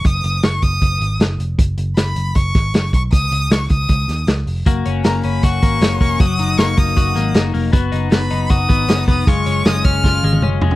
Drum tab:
HH |x-x-x-x-x-x-x-x-|x-x-x-x-x-x-x-x-|x-x-x-x-x-x-x-o-|x-x-x-x-x-x-x-o-|
SD |----o-------o---|----o-----o-o---|----o-----o-o---|----o-------o---|
T1 |----------------|----------------|----------------|----------------|
T2 |----------------|----------------|----------------|----------------|
FT |----------------|----------------|----------------|----------------|
BD |o-----o-o-------|o-------o-o---o-|o-----o-o-------|o-------o-o---o-|

HH |x-x-x-x-x-x-x-o-|x-x-x-x-x-x-x-o-|x-x-x-x---------|
SD |----o-----o-o---|----o-------o---|----o---o-------|
T1 |----------------|----------------|----------oo----|
T2 |----------------|----------------|------------o---|
FT |----------------|----------------|--------------oo|
BD |o-----o-o-------|o-------o-o---o-|o-----o-o-------|